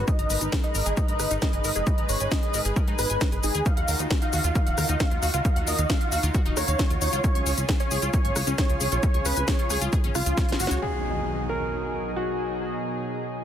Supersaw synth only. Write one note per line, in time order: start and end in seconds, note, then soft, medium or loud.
0.08 0.37 D#5 loud
0.64 0.93 D#5 medium
0.97 1.37 D#5 medium
1.42 1.72 D#5 medium
1.76 2.05 D#5 medium
2.09 2.29 C#5 medium
2.32 2.61 D#5 loud
2.99 3.38 B4 medium
3.44 3.63 G#4 medium
3.66 3.95 F5 loud
4.22 4.51 F5 medium
4.55 4.95 F5 loud
5.00 5.30 F5 medium
5.34 5.63 F5 medium
5.67 5.87 D#5 medium
5.90 6.19 F5 medium
6.57 6.96 C#5 loud
7.02 7.21 C#5 medium
7.24 7.54 C#5 loud
7.80 8.10 C#5 loud
8.14 8.53 C#5 loud
8.59 8.88 C#5 medium
8.92 9.22 C#5 loud
9.26 9.45 B4 medium
9.48 9.78 C#5 loud
10.15 10.55 F4 loud
10.60 10.80 F#4 medium